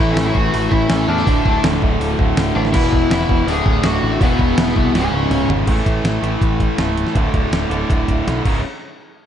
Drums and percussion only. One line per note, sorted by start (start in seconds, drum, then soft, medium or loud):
0.17 snare loud
0.17 open hi-hat medium
0.26 snare soft
0.35 kick medium
0.54 open hi-hat medium
0.72 kick medium
0.89 snare loud
0.89 open hi-hat medium
1.18 snare soft
1.27 kick loud
1.27 open hi-hat medium
1.46 kick medium
1.64 snare loud
1.64 open hi-hat medium
1.73 snare soft
1.82 kick medium
2.01 open hi-hat medium
2.19 kick medium
2.37 snare loud
2.37 open hi-hat medium
2.65 snare soft
2.74 kick loud
2.74 crash loud
2.93 kick loud
3.11 snare loud
3.11 open hi-hat medium
3.21 snare soft
3.29 kick medium
3.48 open hi-hat medium
3.66 kick loud
3.83 snare loud
3.83 open hi-hat medium
4.21 kick loud
4.21 open hi-hat medium
4.39 kick medium
4.58 snare loud
4.58 open hi-hat medium
4.68 snare soft
4.76 kick medium
4.95 snare medium
4.95 open hi-hat medium
5.31 mid tom loud
5.31 open hi-hat medium
5.50 floor tom loud
5.67 kick medium
5.67 closed hi-hat medium
5.67 crash medium
5.86 kick medium
5.86 closed hi-hat medium
6.05 snare loud
6.05 closed hi-hat medium
6.24 closed hi-hat medium
6.42 kick loud
6.42 closed hi-hat medium
6.60 kick medium
6.60 closed hi-hat medium
6.78 snare loud
6.78 closed hi-hat medium
6.97 closed hi-hat medium
7.07 snare soft
7.15 kick medium
7.15 closed hi-hat medium
7.34 kick medium
7.34 closed hi-hat medium
7.53 snare loud
7.53 closed hi-hat medium
7.71 closed hi-hat medium
7.90 kick medium
7.90 closed hi-hat medium
8.08 kick medium
8.08 closed hi-hat medium
8.28 snare medium
8.28 closed hi-hat medium
8.45 kick medium
8.45 crash medium